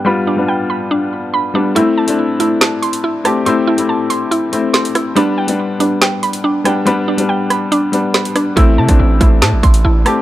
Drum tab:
HH |----------------|x--x--x-x-xx--x-|x--x--x-x-x--xx-|x--x--x-x-xx--x-|
SD |----------------|--------o-----r-|------------o-r-|--------o-----r-|
BD |----------------|----------------|----------------|----------------|

HH |x--x--x-x-x--xx-|x--x--x-x-xx--x-|
SD |------r-----o-r-|--------o-----r-|
BD |----------------|o--o--o---o-----|